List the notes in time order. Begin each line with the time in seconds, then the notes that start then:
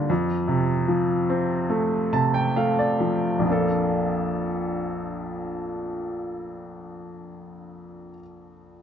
Already playing: A#2 D3 G3 A#3
0.10 F2
0.48 C3
0.88 F3
1.30 C4
1.70 A3
2.13 C3 A5
2.34 G5
2.56 A3 F5
2.79 D5
3.00 F3
3.39 A#1 F2
3.44 F3 A#3
3.49 D4 A4